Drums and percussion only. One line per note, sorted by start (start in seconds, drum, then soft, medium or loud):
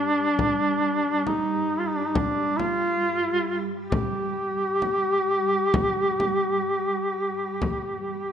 0.39 frame drum medium
1.27 frame drum medium
2.15 frame drum medium
2.60 frame drum medium
3.92 frame drum medium
4.82 frame drum soft
5.74 frame drum medium
6.20 frame drum medium
7.62 frame drum medium